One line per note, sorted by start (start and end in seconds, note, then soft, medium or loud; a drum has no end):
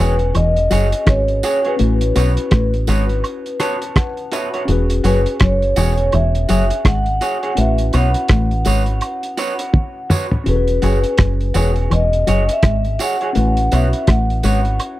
0.00 0.33 E1 medium
0.00 0.21 E3 medium
0.00 1.02 C#4 medium
0.00 0.14 F#4 medium
0.00 1.03 F#4 medium
0.00 0.15 G#4 medium
0.00 1.04 G#4 medium
0.00 0.32 B4 medium
0.00 1.05 B4 medium
0.00 0.15 C#5 medium
0.19 closed hi-hat soft
0.35 0.69 E1 loud
0.35 0.56 E3 medium
0.35 1.10 D#5 loud
0.35 closed hi-hat medium
0.35 high woodblock medium
0.56 closed hi-hat soft
0.70 0.92 F#1 medium
0.70 0.84 F#3 medium
0.70 0.86 F#4 medium
0.70 0.87 G#4 medium
0.70 0.87 C#5 medium
0.70 closed hi-hat medium
0.70 tambourine medium
0.92 muted clean electric guitar stroke medium
0.92 closed hi-hat medium
1.06 1.41 G#1 medium
1.06 1.29 G#3 medium
1.06 1.75 C#4 soft
1.06 1.79 F#4 soft
1.06 1.80 G#4 soft
1.06 1.80 B4 soft
1.06 1.67 C#5 loud
1.06 kick loud
1.06 cross-stick loud
1.06 closed hi-hat medium
1.28 closed hi-hat soft
1.43 1.59 F#4 medium
1.43 1.59 G#4 medium
1.43 1.60 C#5 medium
1.43 closed hi-hat medium
1.43 tambourine medium
1.65 1.74 F#4 soft
1.65 1.74 G#4 medium
1.65 4.29 B4 medium
1.65 1.73 C#5 medium
1.65 closed hi-hat soft
1.76 2.01 A3 medium
1.76 4.63 C#4 medium
1.76 4.64 E4 medium
1.76 4.65 F#4 medium
1.76 closed hi-hat medium
1.81 2.14 A1 medium
1.81 4.66 B4 medium
2.01 closed hi-hat medium
2.15 2.37 B1 medium
2.15 2.29 B3 medium
2.15 2.31 F#4 medium
2.15 2.31 B4 medium
2.15 2.32 C#5 medium
2.15 closed hi-hat medium
2.15 tambourine soft
2.37 closed hi-hat soft
2.51 2.86 A1 medium
2.51 2.73 A3 medium
2.51 kick loud
2.51 cross-stick medium
2.51 closed hi-hat medium
2.74 closed hi-hat soft
2.87 3.22 G#1 medium
2.87 3.09 G#3 medium
2.87 3.03 F#4 medium
2.87 3.04 B4 loud
2.87 3.04 C#5 medium
2.87 closed hi-hat medium
2.87 tambourine medium
3.09 closed hi-hat soft
3.24 closed hi-hat medium
3.24 high woodblock medium
3.46 closed hi-hat soft
3.60 3.76 F#4 medium
3.60 3.76 B4 loud
3.60 3.76 C#5 loud
3.60 3.94 A5 medium
3.60 cross-stick medium
3.60 closed hi-hat medium
3.60 tambourine medium
3.82 muted clean electric guitar stroke soft
3.82 closed hi-hat medium
3.96 4.30 F#5 medium
3.96 kick loud
3.96 cross-stick loud
3.96 closed hi-hat medium
4.17 closed hi-hat soft
4.32 4.48 F#4 medium
4.32 4.48 B4 medium
4.32 4.48 C#5 medium
4.32 4.66 E5 medium
4.32 closed hi-hat medium
4.32 tambourine medium
4.54 4.63 F#4 medium
4.54 4.62 B4 medium
4.54 4.62 C#5 medium
4.54 closed hi-hat soft
4.65 5.02 E1 medium
4.65 4.90 E3 medium
4.65 7.52 C#4 medium
4.65 7.53 F#4 medium
4.65 closed hi-hat medium
4.70 7.54 G#4 medium
4.70 7.55 B4 medium
4.90 closed hi-hat medium
5.04 5.25 F#1 medium
5.04 5.18 F#3 medium
5.04 5.20 F#4 medium
5.04 5.20 G#4 medium
5.04 5.42 B4 medium
5.04 5.20 C#5 medium
5.04 closed hi-hat medium
5.04 tambourine soft
5.26 closed hi-hat medium
5.40 5.75 F#1 medium
5.40 5.63 F#3 medium
5.40 6.10 C#5 medium
5.40 kick medium
5.40 cross-stick loud
5.40 closed hi-hat medium
5.62 closed hi-hat soft
5.76 6.11 E1 medium
5.76 5.99 E3 medium
5.76 5.92 F#4 medium
5.76 5.92 G#4 medium
5.76 5.93 C#5 medium
5.76 closed hi-hat medium
5.76 tambourine medium
5.97 closed hi-hat soft
6.12 6.47 E1 loud
6.12 6.35 E3 medium
6.12 6.88 E5 loud
6.12 closed hi-hat medium
6.12 high woodblock medium
6.35 closed hi-hat soft
6.49 6.70 F#1 medium
6.49 6.62 F#3 medium
6.49 6.64 F#4 medium
6.49 6.65 G#4 medium
6.49 6.65 C#5 medium
6.49 closed hi-hat medium
6.49 tambourine medium
6.70 muted clean electric guitar stroke soft
6.70 closed hi-hat medium
6.85 7.19 G#1 medium
6.85 7.07 G#3 medium
6.85 7.51 F#5 loud
6.85 kick loud
6.85 cross-stick loud
6.85 closed hi-hat medium
7.06 closed hi-hat soft
7.21 7.37 F#4 medium
7.21 7.37 G#4 medium
7.21 7.37 C#5 medium
7.21 closed hi-hat medium
7.21 tambourine medium
7.43 7.52 F#4 soft
7.43 7.51 G#4 medium
7.43 7.51 C#5 medium
7.43 closed hi-hat soft
7.52 10.41 C#4 medium
7.52 7.58 F#5 medium
7.57 7.92 A1 medium
7.57 7.79 A3 medium
7.57 10.42 E4 medium
7.57 10.43 F#4 medium
7.57 7.92 E5 loud
7.57 closed hi-hat medium
7.61 10.44 B4 medium
7.78 closed hi-hat medium
7.93 8.14 B1 medium
7.93 8.07 B3 medium
7.93 8.09 F#4 medium
7.93 8.09 B4 medium
7.93 8.10 C#5 medium
7.93 10.08 F#5 medium
7.93 closed hi-hat medium
7.93 tambourine soft
7.93 high woodblock medium
8.14 closed hi-hat medium
8.28 8.64 A1 medium
8.28 8.51 A3 medium
8.28 kick loud
8.28 cross-stick loud
8.28 closed hi-hat medium
8.51 closed hi-hat soft
8.65 9.00 G#1 medium
8.65 8.87 G#3 medium
8.65 8.81 F#4 medium
8.65 8.82 B4 medium
8.65 8.82 C#5 medium
8.65 closed hi-hat medium
8.65 tambourine medium
8.86 closed hi-hat soft
9.01 closed hi-hat medium
9.01 high woodblock medium
9.23 closed hi-hat soft
9.37 9.53 F#4 medium
9.37 9.54 B4 medium
9.37 9.54 C#5 medium
9.37 closed hi-hat medium
9.37 tambourine medium
9.59 muted clean electric guitar stroke soft
9.59 closed hi-hat medium
9.73 kick loud
9.73 high tom medium
10.10 10.25 F#4 medium
10.10 10.26 B4 medium
10.10 10.26 C#5 medium
10.10 mid tom medium
10.10 tambourine medium
10.31 muted clean electric guitar stroke soft
10.31 floor tom medium
10.44 10.81 E1 medium
10.44 10.68 E3 medium
10.44 13.30 C#4 medium
10.44 13.31 F#4 medium
10.44 13.32 G#4 medium
10.44 closed hi-hat medium
10.49 10.56 A4 medium
10.49 11.96 B4 medium
10.56 13.36 B4 medium
10.68 closed hi-hat medium
10.82 11.03 F#1 medium
10.82 10.95 F#3 medium
10.82 10.98 F#4 medium
10.82 10.98 G#4 medium
10.82 10.98 C#5 medium
10.82 closed hi-hat medium
10.82 tambourine soft
11.04 closed hi-hat soft
11.18 11.53 F#1 medium
11.18 11.40 F#3 medium
11.18 kick loud
11.18 cross-stick loud
11.18 closed hi-hat medium
11.41 closed hi-hat soft
11.54 11.89 E1 loud
11.54 11.76 E3 medium
11.54 11.70 F#4 medium
11.54 11.70 G#4 medium
11.54 11.71 C#5 medium
11.54 closed hi-hat medium
11.54 tambourine medium
11.76 closed hi-hat soft
11.90 12.25 E1 loud
11.90 12.12 E3 medium
11.90 12.52 D#5 loud
11.90 closed hi-hat medium
11.90 high woodblock medium
12.13 closed hi-hat soft
12.27 12.48 F#1 medium
12.27 12.40 F#3 medium
12.27 12.43 F#4 medium
12.27 12.43 G#4 medium
12.27 12.43 C#5 medium
12.27 closed hi-hat medium
12.27 tambourine medium
12.49 12.98 E5 loud
12.49 muted clean electric guitar stroke soft
12.49 closed hi-hat medium
12.63 12.97 G#1 medium
12.63 12.85 G#3 medium
12.63 kick loud
12.63 cross-stick loud
12.63 closed hi-hat medium
12.85 closed hi-hat soft
12.99 13.15 F#4 medium
12.99 13.15 G#4 medium
12.99 13.15 C#5 medium
12.99 13.37 F#5 medium
12.99 closed hi-hat medium
12.99 tambourine medium
13.21 13.30 F#4 medium
13.21 13.29 G#4 medium
13.21 13.29 C#5 medium
13.21 closed hi-hat soft
13.33 13.70 A1 medium
13.33 13.57 A3 medium
13.33 15.00 C#4 medium
13.33 15.00 E4 medium
13.33 15.00 F#4 medium
13.33 closed hi-hat medium
13.39 15.00 B4 medium
13.39 13.74 F#5 loud
13.57 closed hi-hat medium
13.72 13.92 B1 medium
13.72 13.85 B3 medium
13.72 13.87 F#4 medium
13.72 13.87 B4 medium
13.72 13.88 C#5 medium
13.72 14.10 E5 medium
13.72 closed hi-hat medium
13.72 tambourine soft
13.93 closed hi-hat medium
14.07 14.42 A1 medium
14.07 14.29 A3 medium
14.07 15.00 F#5 medium
14.07 kick medium
14.07 cross-stick loud
14.07 closed hi-hat medium
14.30 closed hi-hat soft
14.43 14.78 G#1 medium
14.43 14.65 G#3 medium
14.43 14.59 F#4 medium
14.43 14.59 B4 medium
14.43 14.60 C#5 medium
14.43 closed hi-hat medium
14.43 tambourine medium
14.65 closed hi-hat soft
14.80 closed hi-hat medium
14.80 high woodblock medium